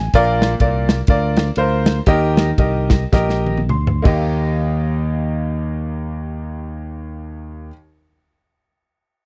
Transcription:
Already playing: grand piano G#5
0.13 fingered electric bass A#1, grand piano A#2 F4 A#4 D5, kick, ride bell
0.42 snare, ride bell
0.60 fingered electric bass C2, grand piano F4 A#4 D5, kick, ride bell
0.89 snare, ride bell
1.07 fingered electric bass D2, grand piano F4 A#4 D5, kick, ride bell
1.36 snare, ride bell
1.56 fingered electric bass D2, grand piano F4 A#4 C5, ride bell
1.86 snare, ride bell
2.06 fingered electric bass D#2, grand piano D#3 G4 A#4 D#5, kick, ride bell
2.37 snare, ride bell
2.58 fingered electric bass C2, grand piano G4 A#4 D#5, kick, ride bell
2.90 kick, snare, ride bell
3.12 fingered electric bass A#1, grand piano G4 A#4 D#5, kick, snare
3.29 snare
3.46 high tom
3.57 high tom
3.69 fingered electric bass D2, grand piano C6, mid tom
3.87 mid tom
4.02 grand piano D#2 A#3 D#4 G4, fingered electric bass D#2, kick, crash
4.06 grand piano D#5

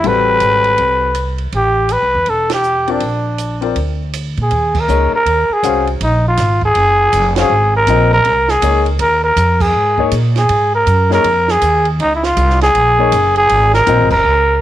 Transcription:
0.03 upright bass A1, grand piano G3 C4 F#4 A4, trumpet B4, ride
0.40 upright bass G#1, hi-hat pedal, ride
0.64 ride
0.78 upright bass C2, ride
1.15 hi-hat pedal, ride
1.38 ride
1.52 upright bass A1, trumpet G4, ride
1.89 trumpet B4, hi-hat pedal, ride
2.02 upright bass C2
2.15 upright bass E2
2.26 upright bass E1, trumpet A4, ride
2.50 snare, ride
2.54 trumpet G4
2.63 hi-hat pedal
2.87 grand piano C4 F4 A#4 D5, trumpet D4, ride
3.00 upright bass A#1, ride
3.38 hi-hat pedal, ride
3.61 grand piano C4 F4 A#4 D5, ride
3.76 upright bass D2, ride
4.13 hi-hat pedal, ride
4.37 upright bass A#2, ride
4.42 trumpet G#4
4.51 upright bass D#2, ride
4.75 kick, crash
4.80 trumpet A#4
4.88 upright bass C#2, grand piano A#3 D#4 G#4 C#5, hi-hat pedal
5.12 trumpet A#4, muted upright bass stroke
5.26 upright bass D#2, ride
5.49 trumpet G#4, muted upright bass stroke
5.63 upright bass C2, grand piano C#4 F#4 C5 F5, hi-hat pedal, ride
5.87 ride
6.01 upright bass A#1, trumpet D#4, ride
6.28 trumpet F4
6.37 upright bass G#1, snare, hi-hat pedal, ride
6.61 trumpet G#4, kick
6.75 upright bass F#1, ride
7.12 upright bass F1, hi-hat pedal, ride
7.36 grand piano C#4 F#4 C5 F5, trumpet G#4, snare, ride
7.49 upright bass G#1
7.76 trumpet A#4
7.87 upright bass A#1, grand piano C4 F4 A#4 D#5, hi-hat pedal, ride
8.13 trumpet A#4
8.25 upright bass C2, ride
8.48 trumpet G#4, snare
8.62 upright bass C#2, grand piano A#3 D#4 G#4 C#5, hi-hat pedal, ride
8.86 ride
8.99 upright bass D#2, trumpet A#4, ride
9.24 trumpet A#4
9.36 upright bass F2, hi-hat pedal, ride
9.60 trumpet G#4, kick, crash
9.73 upright bass G#2
9.97 grand piano A#3 D#4 G#4 C#5, kick
10.11 upright bass A#2, hi-hat pedal, ride
10.36 trumpet G#4, snare, ride
10.49 upright bass G#2, ride
10.75 trumpet A#4
10.86 upright bass F#2, hi-hat pedal, ride
11.10 grand piano A#3 D#4 G#4 C#5, snare
11.14 trumpet A#4
11.24 upright bass F2, ride
11.48 trumpet G#4, snare
11.62 upright bass D#2, hi-hat pedal, ride
11.85 ride
11.99 upright bass C#2, trumpet D#4, ride
12.15 trumpet E4
12.23 trumpet F4, snare
12.37 upright bass C2, hi-hat pedal, ride
12.50 snare
12.61 trumpet G#4, snare, ride
12.75 upright bass A#1, ride
12.98 grand piano A#3 D#4 G#4 C#5
13.12 upright bass F#1, hi-hat pedal, ride
13.36 trumpet G#4, ride
13.49 upright bass G#1, ride
13.74 trumpet A#4, snare
13.86 upright bass A#1, grand piano C4 F4 A#4 D#5, hi-hat pedal, ride
14.00 upright bass G#1
14.11 upright bass F#1, trumpet A#4, kick, crash
14.25 upright bass C#2

